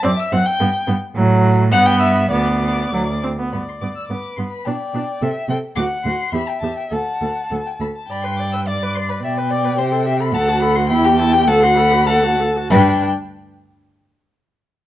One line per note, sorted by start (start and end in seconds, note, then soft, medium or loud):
0.03 0.13 F#2 medium
0.03 0.11 C4 medium
0.03 0.10 D5 loud
0.03 0.21 D6 loud
0.18 0.34 E5 medium
0.18 0.33 E6 loud
0.32 0.41 F#2 medium
0.32 0.40 C4 medium
0.32 0.48 F#5 loud
0.32 0.40 F#6 loud
0.46 0.88 G5 medium
0.46 0.87 G6 medium
0.60 0.69 G2 medium
0.60 0.68 B3 medium
0.87 0.96 G2 medium
0.87 0.95 B3 medium
1.15 1.74 A2 medium
1.15 1.68 F#3 loud
1.72 2.31 G2 medium
1.72 2.30 B3 loud
1.72 1.88 F#5 loud
1.72 1.78 F#6 loud
1.86 2.00 G5 medium
1.86 1.99 G6 loud
2.00 2.30 E5 medium
2.00 2.08 E6 loud
2.31 2.91 D2 medium
2.31 2.91 B3 medium
2.31 3.21 D5 medium
2.31 3.21 D6 loud
2.93 3.31 D2 medium
2.93 3.01 F#3 medium
3.23 3.29 C4 medium
3.39 3.53 B3 medium
3.52 3.61 G2 soft
3.52 3.61 B3 soft
3.52 4.13 D5 soft
3.52 3.58 B5 medium
3.68 3.74 C6 medium
3.81 3.90 G2 soft
3.81 3.90 B3 soft
3.81 3.87 D6 medium
3.96 4.08 E6 medium
4.09 4.18 G2 soft
4.09 4.18 B3 soft
4.09 4.69 B4 soft
4.09 4.36 D6 medium
4.37 4.46 G2 soft
4.37 4.46 B3 soft
4.37 4.43 C6 medium
4.51 4.66 B5 medium
4.65 4.74 B2 medium
4.65 4.74 D4 medium
4.65 5.24 D5 medium
4.65 5.48 G5 medium
4.94 5.02 B2 medium
4.94 5.02 D4 medium
5.22 5.30 C3 medium
5.22 5.30 A4 medium
5.22 5.49 E5 medium
5.49 5.57 C3 medium
5.49 5.58 A4 medium
5.49 5.58 G5 medium
5.75 5.85 D2 medium
5.75 5.84 F#4 medium
5.75 6.33 F#5 medium
5.75 5.83 D6 loud
6.04 6.13 D2 medium
6.04 6.14 F#4 medium
6.04 6.34 C6 medium
6.32 6.41 E2 medium
6.32 6.41 G4 medium
6.32 6.94 E5 medium
6.32 6.49 B5 loud
6.48 6.60 G5 medium
6.61 6.70 E2 medium
6.61 6.71 G4 soft
6.61 6.76 A5 medium
6.77 6.83 G5 medium
6.90 7.00 D2 medium
6.90 6.98 A4 medium
6.90 7.50 F#5 medium
6.90 7.81 A5 medium
7.21 7.30 D2 medium
7.21 7.29 A4 soft
7.51 7.59 D2 medium
7.51 7.59 A4 soft
7.66 7.72 G5 medium
7.80 7.88 D2 medium
7.80 7.88 A4 soft
7.80 7.86 B5 medium
7.96 8.12 A5 medium
8.09 9.20 G2 medium
8.09 8.25 D5 medium
8.09 8.69 G5 medium
8.09 8.23 B5 medium
8.24 8.41 B4 soft
8.24 8.38 C6 medium
8.38 8.55 D5 soft
8.38 8.52 D6 medium
8.53 8.67 B4 soft
8.53 8.59 E6 medium
8.68 8.84 D5 soft
8.68 9.23 D5 medium
8.68 8.96 D6 medium
8.83 8.98 B4 soft
8.95 9.11 D5 soft
8.95 9.09 C6 medium
9.09 9.22 B4 medium
9.09 9.15 B5 medium
9.22 9.80 B2 medium
9.22 9.39 D5 medium
9.22 9.32 E5 medium
9.22 10.21 G5 medium
9.38 9.52 B4 medium
9.51 9.66 D5 medium
9.51 9.80 D5 medium
9.64 9.77 B4 medium
9.78 10.36 C3 medium
9.78 9.93 G4 medium
9.78 10.05 C5 medium
9.92 10.07 A4 medium
10.06 10.21 G4 medium
10.06 10.14 E5 medium
10.20 10.34 A4 medium
10.20 10.36 B5 loud
10.33 10.92 D2 medium
10.33 10.50 A4 medium
10.33 10.89 F#5 medium
10.33 10.62 A5 loud
10.48 10.63 F#4 medium
10.62 10.78 A4 medium
10.62 10.77 B5 loud
10.75 10.90 F#4 medium
10.75 10.92 C6 loud
10.90 11.48 E2 medium
10.90 11.06 E4 medium
10.90 11.49 G5 loud
10.90 11.06 B5 loud
11.05 11.21 G4 medium
11.05 11.18 G5 loud
11.19 11.35 E4 medium
11.19 11.34 A5 loud
11.32 11.47 G4 medium
11.32 11.49 G5 loud
11.47 12.49 D2 medium
11.47 11.64 A4 loud
11.47 12.07 F#5 loud
11.47 11.62 A5 loud
11.63 11.78 F#4 medium
11.63 11.76 C6 loud
11.77 11.93 A4 medium
11.77 12.08 B5 loud
11.91 12.07 F#4 medium
12.07 12.25 A4 medium
12.07 12.38 F#5 medium
12.07 12.70 A5 loud
12.24 12.42 F#4 medium
12.40 12.58 A4 medium
12.56 12.70 F#4 medium
12.70 13.04 G2 medium
12.70 13.05 D4 medium
12.70 13.04 B4 medium
12.70 13.05 G5 loud